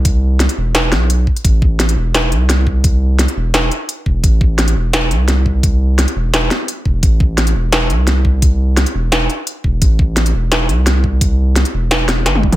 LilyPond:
<<
  \new Staff \with { instrumentName = "Sub bass" } { \clef bass \time 4/4 \key a \minor \tempo 4 = 172 c,4 r8 e,,4 b,,4 r8 | a,,4. e,,4 c,4.~ | c,4 r8 e,,4 r4 e,,8 | a,,4. e,,4 c,4.~ |
c,4 r8 e,,4 r4 e,,8 | a,,4. e,,4 c,4.~ | c,4 r8 e,,4 r4 e,,8 | a,,4. e,,4 c,4.~ |
c,4 r8 e,,4. g,,8 e,,8 | }
  \new DrumStaff \with { instrumentName = "Drums" } \drummode { \time 4/4 <hh bd>4 <hh sn>16 hh8. <hh sn>8 <hh sn>8 hh8 bd16 hh16 | <hh bd>8 bd8 <hh sn>16 hh8. <hh sn>8 hh8 <hh sn>8 bd8 | <hh bd>4 <hh sn>16 hh8. <hh sn>8 hh8 hh8 bd8 | <hh bd>8 bd8 <hh sn>16 hh8. <hh sn>8 hh8 <hh sn>8 bd8 |
<hh bd>4 <hh sn>16 hh8. <hh sn>8 <hh sn>8 hh8 bd8 | <hh bd>8 bd8 <hh sn>16 hh8. <hh sn>8 hh8 <hh sn>8 bd8 | <hh bd>4 <hh sn>16 hh8. <hh sn>8 hh8 hh8 bd8 | <hh bd>8 bd8 <hh sn>16 hh8. <hh sn>8 hh8 <hh sn>8 bd8 |
<hh bd>4 <hh sn>16 hh8. <hh sn>8 <hh sn>8 <hh sn>16 tommh16 bd16 <hh toml>16 | }
>>